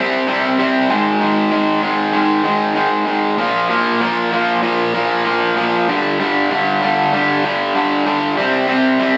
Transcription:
0.00 0.26 C3 medium
0.00 0.26 G3 medium
0.00 0.27 C4 loud
0.27 0.58 C3 medium
0.27 0.58 G3 medium
0.27 0.58 C4 loud
0.59 0.88 C3 loud
0.59 0.88 G3 loud
0.59 0.88 C4 loud
0.89 1.19 G#2 loud
0.89 1.20 D#3 loud
0.89 1.20 G#3 loud
1.20 1.50 G#2 medium
1.20 1.50 D#3 medium
1.20 1.51 G#3 loud
1.51 1.81 G#2 loud
1.51 1.81 D#3 loud
1.51 1.81 G#3 loud
1.82 2.12 G#2 medium
1.82 2.12 D#3 medium
1.82 2.13 G#3 loud
2.13 2.42 G#2 medium
2.13 2.43 D#3 loud
2.13 2.44 G#3 loud
2.43 2.74 G#2 medium
2.43 2.74 D#3 medium
2.43 2.74 G#3 loud
2.75 3.04 G#2 medium
2.75 3.05 D#3 medium
2.75 3.05 G#3 loud
3.05 3.36 G#2 medium
3.05 3.36 D#3 loud
3.05 3.36 G#3 medium
3.37 3.67 A#2 loud
3.37 3.69 F3 loud
3.37 3.70 A#3 loud
3.69 3.99 A#2 medium
3.69 4.01 F3 medium
3.69 4.01 A#3 loud
4.01 4.31 A#2 loud
4.01 4.32 F3 loud
4.01 4.32 A#3 loud
4.32 4.61 A#2 medium
4.32 4.61 F3 medium
4.32 4.61 A#3 medium
4.62 4.92 A#2 loud
4.62 4.93 F3 loud
4.62 4.93 A#3 loud
4.93 5.24 A#2 loud
4.93 5.24 F3 medium
4.93 5.25 A#3 medium
5.25 5.55 A#2 medium
5.25 5.55 F3 medium
5.25 5.56 A#3 medium
5.56 5.85 A#2 medium
5.56 5.86 F3 loud
5.56 5.86 A#3 loud
5.87 6.18 G2 loud
5.87 6.19 D3 loud
5.87 6.20 G3 loud
6.20 6.50 G2 medium
6.20 6.50 D3 medium
6.20 6.51 G3 loud
6.51 6.80 G2 loud
6.51 6.81 D3 loud
6.51 6.82 G3 loud
6.81 7.12 G2 medium
6.81 7.12 D3 medium
6.81 7.12 G3 loud
7.13 7.43 G2 loud
7.13 7.44 D3 loud
7.13 7.44 G3 loud
7.45 7.74 G2 medium
7.45 7.74 D3 medium
7.45 7.75 G3 medium
7.75 8.04 G2 medium
7.75 8.05 D3 medium
7.75 8.05 G3 loud
8.06 8.35 G2 medium
8.06 8.35 D3 loud
8.06 8.35 G3 loud
8.37 8.67 C3 loud
8.37 8.67 G3 loud
8.37 8.68 C4 loud
8.68 8.99 C3 medium
8.68 8.99 G3 medium
8.68 9.00 C4 medium
8.99 9.17 C3 medium
8.99 9.17 G3 loud
8.99 9.17 C4 loud

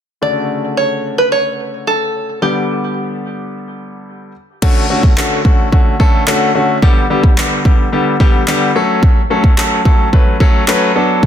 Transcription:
0.22 2.38 C#3 medium
0.22 2.38 D3 medium
0.22 2.38 A3 medium
0.22 2.39 F#4 medium
0.22 0.77 D5 medium
0.77 1.18 C#5 medium
1.18 1.32 B4 medium
1.32 1.89 C#5 medium
1.87 2.42 A4 medium
2.42 4.31 D3 medium
2.42 4.31 G3 medium
2.42 4.31 B3 medium
2.42 2.93 G4 medium
2.42 4.31 G4 medium
4.62 4.84 D3 loud
4.62 4.84 A3 loud
4.62 4.84 C#4 medium
4.62 4.84 F#4 loud
4.62 kick loud
4.62 crash medium
4.90 5.11 D3 medium
4.90 5.12 A3 medium
4.90 5.12 C#4 medium
4.90 5.12 F#4 medium
5.03 kick medium
5.17 5.39 D3 medium
5.17 5.39 A3 medium
5.17 5.39 C#4 medium
5.17 5.39 F#4 medium
5.17 clap loud
5.45 5.66 D3 medium
5.45 5.66 A3 medium
5.45 5.67 C#4 medium
5.45 5.67 F#4 medium
5.45 kick medium
5.72 5.94 D3 medium
5.72 5.94 A3 medium
5.72 5.94 C#4 medium
5.72 5.94 F#4 medium
5.72 kick medium
6.00 6.21 D3 loud
6.00 6.21 A3 medium
6.00 6.22 C#4 loud
6.00 6.22 A4 loud
6.00 kick medium
6.27 6.49 D3 loud
6.27 6.49 A3 loud
6.27 6.49 C#4 loud
6.27 6.49 F#4 loud
6.27 clap loud
6.55 6.76 D3 medium
6.55 6.77 A3 medium
6.55 6.77 C#4 medium
6.55 6.77 F#4 medium
6.82 7.04 D3 loud
6.82 7.04 G3 loud
6.82 7.04 B3 medium
6.82 7.04 G4 loud
6.82 kick loud
7.10 7.32 D3 medium
7.10 7.32 G3 medium
7.10 7.32 B3 medium
7.10 7.32 G4 medium
7.24 kick medium
7.37 7.59 D3 medium
7.37 7.59 G3 medium
7.37 7.59 B3 medium
7.37 7.59 G4 medium
7.37 clap loud
7.65 7.87 D3 medium
7.65 7.87 G3 medium
7.65 7.87 B3 medium
7.65 7.87 G4 medium
7.65 kick medium
7.92 8.14 D3 medium
7.92 8.14 G3 medium
7.92 8.14 B3 medium
7.92 8.14 G4 medium
8.20 8.42 D3 loud
8.20 8.42 G3 loud
8.20 8.42 B3 loud
8.20 8.42 G4 loud
8.20 kick medium
8.48 8.69 D3 loud
8.48 8.69 G3 loud
8.48 8.69 B3 loud
8.48 8.70 G4 loud
8.48 clap loud
8.75 9.19 F#3 medium
8.75 9.19 A3 medium
8.75 9.19 C#4 medium
8.75 9.20 A4 loud
9.03 kick loud
9.30 9.52 F#3 medium
9.30 9.52 A3 medium
9.30 9.52 C#4 medium
9.30 9.52 A4 loud
9.44 kick medium
9.58 9.79 F#3 medium
9.58 9.79 A3 medium
9.58 9.80 C#4 medium
9.58 9.80 A4 medium
9.58 clap loud
9.85 10.07 F#3 medium
9.85 10.07 A3 medium
9.85 10.07 C#4 medium
9.85 10.07 A4 loud
9.85 kick medium
10.13 10.34 F#3 medium
10.13 10.35 A3 medium
10.13 10.35 C#4 medium
10.13 10.35 B4 medium
10.13 kick medium
10.40 10.62 F#3 loud
10.40 10.62 A3 loud
10.40 10.62 C#4 loud
10.40 10.62 A4 loud
10.40 kick medium
10.68 10.89 F#3 loud
10.68 10.90 A3 loud
10.68 10.90 C#4 loud
10.68 10.90 B4 loud
10.68 clap loud
10.95 11.26 F#3 medium
10.95 11.26 B3 medium
10.95 11.26 D4 medium
10.95 11.26 A4 loud
11.23 kick loud

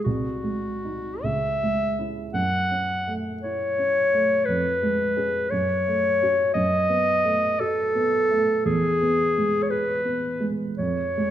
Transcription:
0.04 1.19 C2 soft
0.04 1.24 F#4 medium
0.44 1.07 G#3 soft
0.84 1.19 D#4 soft
1.23 2.31 C#2 soft
1.23 2.17 E5 medium
1.63 2.21 G#3 soft
1.98 2.31 C#4 soft
1.98 2.31 E4 soft
2.34 4.42 F#2 soft
2.34 3.15 F#5 medium
2.71 3.29 C#4 soft
3.08 3.64 A3 soft
3.42 3.99 E4 soft
3.42 4.47 C#5 medium
3.78 4.33 C#4 soft
4.14 4.47 A3 soft
4.45 5.49 F2 soft
4.45 5.52 B4 medium
4.83 5.38 G#3 soft
5.17 5.48 C#4 soft
5.17 5.48 G#4 soft
5.50 6.51 F#2 soft
5.50 6.54 C#5 medium
5.87 6.41 A3 soft
6.22 6.52 C#4 soft
6.22 6.52 F#4 soft
6.54 8.62 F#2 soft
6.54 7.61 D#5 medium
6.89 7.45 B3 soft
7.24 7.80 A3 soft
7.60 8.16 F#4 soft
7.60 8.65 A4 medium
7.95 8.52 B3 soft
8.31 8.66 A3 soft
8.65 10.74 E2 soft
8.65 9.64 G#4 medium
9.02 9.56 B3 soft
9.38 9.91 G#3 soft
9.63 9.72 C#5 soft
9.70 10.27 G#4 soft
9.70 10.51 B4 medium
10.05 10.63 B3 soft
10.40 10.78 G#3 soft
10.79 11.30 F2 soft
10.79 11.30 C#5 medium
11.17 11.30 G#3 soft

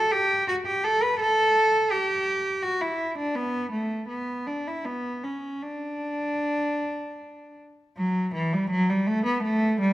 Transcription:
0.00 0.11 A4 loud
0.12 0.47 G4 loud
0.48 0.55 F#4 loud
0.67 0.83 G4 medium
0.84 1.01 A4 loud
1.03 1.20 B4 loud
1.20 1.90 A4 loud
1.91 2.63 G4 loud
2.63 2.81 F#4 loud
2.81 3.17 E4 medium
3.18 3.35 D4 medium
3.36 3.72 B3 loud
3.72 4.08 A3 medium
4.08 4.45 B3 medium
4.47 4.66 D4 medium
4.67 4.85 E4 medium
4.85 5.23 B3 medium
5.24 5.63 C#4 medium
5.63 7.60 D4 medium
7.98 8.32 F#3 medium
8.35 8.53 E3 medium
8.53 8.71 G3 medium
8.70 8.89 F#3 loud
8.89 9.08 G3 medium
9.07 9.26 A3 loud
9.25 9.44 B3 medium
9.43 9.80 A3 loud
9.81 9.93 G3 loud

